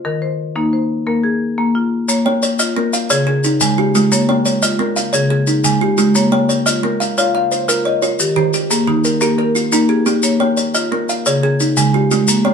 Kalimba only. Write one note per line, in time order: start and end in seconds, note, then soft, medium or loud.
2.26 2.60 A#3 medium
2.26 2.42 C#5 medium
2.43 2.94 C#5 medium
2.60 3.10 D#5 medium
2.76 3.10 A#3 medium
2.93 3.44 F5 medium
3.10 3.27 C#5 medium
3.27 3.78 G#4 medium
3.45 3.95 D#4 medium
3.61 3.95 C#3 medium
3.78 3.94 F4 medium
3.95 4.29 G#3 medium
3.95 4.46 F4 medium
4.29 4.63 A#3 medium
4.29 4.44 C#5 medium
4.45 4.97 C#5 medium
4.62 5.14 D#5 medium
4.79 5.14 A#3 medium
4.96 5.48 F5 medium
5.13 5.30 C#5 medium
5.30 5.82 G#4 medium
5.47 5.98 D#4 medium
5.64 5.98 C#3 medium
5.81 5.97 F4 medium
5.98 6.32 G#3 medium
5.98 6.49 F4 medium
6.32 6.66 A#3 medium
6.32 6.48 C#5 medium
6.49 7.00 C#5 medium
6.66 7.17 D#5 medium
6.83 7.17 A#3 medium
7.00 7.33 F5 medium
7.18 7.52 C#5 medium
7.35 7.86 F5 medium
7.52 8.03 C5 medium
7.69 8.03 A#4 medium
7.85 8.01 C#5 medium
8.02 8.37 F4 medium
8.02 8.53 C#5 medium
8.36 8.70 D#3 medium
8.36 8.53 G4 medium
8.54 9.05 G4 medium
8.71 9.22 G#4 medium
8.87 9.22 D#3 medium
9.05 9.37 A#4 medium
9.22 9.56 G4 medium
9.39 9.90 A#4 medium
9.55 10.06 F4 medium
9.72 10.06 D#4 medium
9.89 10.05 G4 medium
10.06 10.39 A#3 medium
10.06 10.57 G4 medium
10.40 10.74 A#3 medium
10.40 10.56 C#5 medium
10.57 11.08 C#5 medium
10.75 11.26 D#5 medium
10.92 11.26 A#3 medium
11.09 11.60 F5 medium
11.27 11.43 C#5 medium
11.43 11.94 G#4 medium
11.60 12.11 D#4 medium
11.77 12.11 C#3 medium
11.94 12.10 F4 medium
12.11 12.45 G#3 medium
12.11 12.54 F4 medium
12.45 12.54 A#3 medium
12.45 12.54 C#5 medium